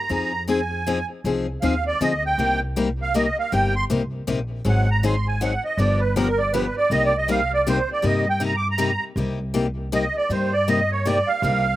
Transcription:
Already playing: accordion A#5
0.09 upright bass F2, steel-string acoustic guitar F3 C4 D#4 G#4
0.48 steel-string acoustic guitar F3 C4 D#4 G#4, accordion G#5
0.87 steel-string acoustic guitar F3 C4 D#4 G#4
1.24 upright bass C2, steel-string acoustic guitar F3 C4 D#4 G#4
1.61 upright bass D#2, steel-string acoustic guitar F3 C4 D#4 G#4, accordion F5
1.87 accordion D5
2.01 upright bass D2, steel-string acoustic guitar F3 C4 D#4 G#4, accordion D#5
2.26 accordion G5
2.38 upright bass C2, steel-string acoustic guitar C3 G3 A#3 D#4 G4
2.76 steel-string acoustic guitar C3 G3 A#3 D#4 G4
3.02 accordion F5
3.14 steel-string acoustic guitar C3 G3 A#3 D#4 G4, accordion D#5
3.39 accordion F5
3.52 upright bass G1, steel-string acoustic guitar C3 G3 A#3 D#4 G4, accordion G5
3.76 accordion C6
3.90 upright bass C2, steel-string acoustic guitar C3 G3 A#3 D#4 G4
4.27 upright bass A#1, steel-string acoustic guitar C3 G3 A#3 D#4 G4
4.65 upright bass G#1, steel-string acoustic guitar D#3 F#3 C4 D#4 G#4
4.69 accordion F#5
4.91 accordion A#5
5.03 steel-string acoustic guitar D#3 F#3 C4 D#4 G#4, accordion C6
5.27 accordion G#5
5.41 steel-string acoustic guitar D#3 F#3 C4 D#4 G#4, accordion F#5
5.65 accordion D#5
5.77 upright bass G1, steel-string acoustic guitar D3 F3 B3 D4 G4, accordion D5
6.00 accordion B4
6.16 steel-string acoustic guitar D3 F3 B3 D4 G4, accordion A#4
6.38 accordion D5
6.53 steel-string acoustic guitar D3 F3 B3 D4 G4, accordion B4
6.77 accordion D5
6.90 upright bass C2, steel-string acoustic guitar C3 G3 A#3 D#4 G4, accordion D#5
7.05 accordion D5
7.18 accordion D#5
7.28 steel-string acoustic guitar C3 G3 A#3 D#4 G4, accordion F5
7.54 accordion D5
7.67 steel-string acoustic guitar C3 G3 A#3 D#4 G4, accordion C5
7.93 accordion D5
8.02 upright bass G2, steel-string acoustic guitar C3 G3 A#3 D#4 G4, accordion D#5
8.29 accordion G5
8.40 steel-string acoustic guitar C3 G3 A#3 D#4 G4
8.45 accordion A#5
8.56 accordion D6
8.71 accordion A#5
8.78 steel-string acoustic guitar C3 G3 A#3 D#4 G4
9.16 upright bass C2, steel-string acoustic guitar C3 G3 A#3 D#4 G4
9.54 steel-string acoustic guitar C3 G3 A#3 D#4 G4
9.92 steel-string acoustic guitar C3 G3 A#3 D#4 G4, accordion D#5
10.17 accordion D5
10.29 upright bass G2, steel-string acoustic guitar C3 G3 A#3 D#4 G4, accordion C5
10.53 accordion D5
10.68 steel-string acoustic guitar C3 G3 A#3 D#4 G4, accordion D#5
10.92 accordion C#5
11.05 steel-string acoustic guitar C3 G3 A#3 D#4 G4, accordion D5
11.27 accordion F5
11.42 upright bass C2, steel-string acoustic guitar C3 G3 A#3 D#4 G4

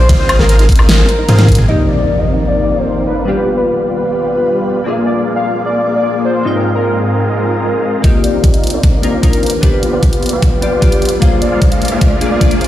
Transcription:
Already playing: soft synth lead C5
0.09 808-style bass G#1, supersaw synth C4 F4 G#4 D#5 F5, synth arpeggio sound C4, kick, closed hi-hat, ride
0.19 synth arpeggio sound D#4, soft synth lead C5
0.29 synth arpeggio sound F4, closed hi-hat, high woodblock
0.39 808-style bass G#1, supersaw synth C4 F4 G#4 D#5 F5, synth arpeggio sound G#4, soft synth lead A#4, snare
0.49 synth arpeggio sound C5, closed hi-hat
0.59 synth arpeggio sound D#4, closed hi-hat
0.69 synth arpeggio sound C4, kick, closed hi-hat, open hi-hat
0.76 808-style bass G#1, supersaw synth C4 F4 G#4 D#5 F5, synth arpeggio sound D#4, soft synth lead A#4, closed hi-hat, high woodblock
0.89 synth arpeggio sound F4, snare, closed hi-hat
0.99 synth arpeggio sound G#4
1.09 synth arpeggio sound C5, closed hi-hat
1.19 synth arpeggio sound D#4
1.28 808-style bass G#2, synth arpeggio sound C4, supersaw synth C4 F4 G#4 D#5 F5, closed hi-hat, high tom
1.39 synth arpeggio sound D#4, snare, closed hi-hat, high tom
1.48 synth arpeggio sound F4, kick, closed hi-hat
1.52 closed hi-hat
1.55 808-style bass G#1, supersaw synth C4 F4 G#4 D#5 G#5, synth arpeggio sound G#4, closed hi-hat, mid tom
1.66 synth keys C3 F3 A#3 D#4 D5, ambient pad D#3 A#3 F4 C5 D5, supersaw synth C4 D#4 A#4 D5, soft synth lead D#5, impact
1.70 synth keys G4
1.88 soft synth lead D5
2.18 soft synth lead D#5
2.48 soft synth lead D5
2.78 soft synth lead C5
3.07 soft synth lead B4
3.25 synth keys G3 B3 D4 F4, ambient pad G3 F4 B4, supersaw synth B3 F4 G4 D5 F5
3.29 synth keys G4
3.37 soft synth lead B4
3.57 soft synth lead B4
3.97 soft synth lead B4
4.84 synth keys A#3 C4 D4 F4, ambient pad A#3 G#4 D5, supersaw synth A#3 F4 G#4 D5 F5, soft synth lead F5
4.88 synth keys G#4
5.06 soft synth lead D5
5.36 soft synth lead F5
5.66 soft synth lead D5
5.96 soft synth lead D5
6.25 soft synth lead C5
6.43 supersaw synth G#2 C4 F4 G#4 D#5 F5, synth keys G#3 C4 D#4 F4 G5, ambient pad G#3 F4 D#5
6.55 soft synth lead A#4
6.75 soft synth lead A#4
7.15 soft synth lead A#4
8.02 ambient pad D#3 A#3 F4 C5 D5, synth keys A#3 D#4 F4 D5, supersaw synth C4 D#4 A#4 D5, soft synth lead D#5, kick, closed hi-hat, riser
8.06 synth keys G4
8.24 soft synth lead D5, closed hi-hat
8.34 supersaw synth C4 D#4 A#4 D5 F5
8.44 kick, closed hi-hat
8.54 soft synth lead D#5, closed hi-hat
8.64 closed hi-hat
8.67 closed hi-hat
8.70 supersaw synth C4 D#4 A#4 D5 F5, closed hi-hat
8.83 soft synth lead D5, kick, closed hi-hat
9.02 synth keys A#3 D4 D#4 F4 A#4, supersaw synth C4 D#4 A#4 D5 F5, closed hi-hat
9.13 soft synth lead C5
9.22 synth keys A#3 D4 D#4 F4 A#4, kick, closed hi-hat
9.33 supersaw synth C4 D#4 A#4 D5 F5, closed hi-hat
9.43 soft synth lead B4, closed hi-hat
9.46 closed hi-hat
9.50 closed hi-hat
9.61 ambient pad G3 B4, synth keys B3 D4 F4 G4, supersaw synth B3 F4 G4 D5 F5, kick, closed hi-hat
9.65 synth keys B4
9.73 soft synth lead B4
9.83 closed hi-hat
9.93 supersaw synth B3 F4 G4 D5 F5, soft synth lead B4
10.03 kick, closed hi-hat
10.13 closed hi-hat
10.23 closed hi-hat
10.26 closed hi-hat
10.29 supersaw synth B3 F4 G4 D5 F5, soft synth lead B4, closed hi-hat
10.42 kick, closed hi-hat
10.61 synth keys B3 D4 F4 G4 D5, supersaw synth B3 F4 G4 D5 F5, closed hi-hat
10.81 synth keys B3 D4 F4 G4 D5, kick, closed hi-hat
10.92 supersaw synth B3 F4 G4 D5 F5, closed hi-hat
11.02 closed hi-hat
11.05 closed hi-hat
11.09 closed hi-hat
11.20 synth keys A#3 D4 F4 G#4, ambient pad A#3 G#4 D5, supersaw synth A#3 F4 G#4 D5 F5, soft synth lead F5, kick, closed hi-hat
11.24 synth keys C5
11.42 soft synth lead D5, closed hi-hat
11.52 supersaw synth A#3 F4 G#4 D5 F5
11.62 kick, closed hi-hat
11.72 soft synth lead F5, closed hi-hat
11.82 closed hi-hat
11.85 closed hi-hat
11.88 supersaw synth A#3 F4 G#4 D5 F5, closed hi-hat
12.01 soft synth lead D5, kick, closed hi-hat
12.20 synth keys A#3 D4 F4 G#4 D5, supersaw synth A#3 F4 G#4 D5 F5, closed hi-hat
12.31 soft synth lead D5
12.40 synth keys A#3 D4 F4 G#4 D5, kick, closed hi-hat
12.51 supersaw synth A#3 F4 G#4 D5 F5, closed hi-hat
12.61 soft synth lead C5, closed hi-hat
12.64 closed hi-hat

